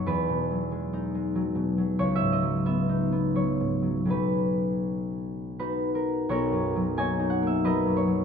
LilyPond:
<<
  \new Staff \with { instrumentName = "Harp" } { \time 3/4 \key b \major \tempo 4 = 88 << { <b' dis'' fis''>2. | cis''16 e''16 dis''8 e''4 cis''4 | b'2 b'8 ais'8 | cis''4 gis''8 fis''16 e''16 dis''8 cis''8 | } \\ { r2. | r2. | r2 <dis' fis'>4 | <fis' ais'>4 <cis'' dis''>4 <ais' b'>4 | } >> }
  \new Staff \with { instrumentName = "Harp" } { \clef bass \time 3/4 \key b \major \tuplet 3/2 { <e, fis b dis'>8 b,8 fis8 gis8 dis'8 gis8 fis8 b,8 fis8 } | \tuplet 3/2 { cis,8 gis,8 fis8 b8 dis'8 b8 fis8 gis,8 fis8 } | <b,, fis cis' dis'>2. | \tuplet 3/2 { b,,8 fis,8 fis8 ais8 dis'8 ais8 fis8 fis,8 fis8 } | }
>>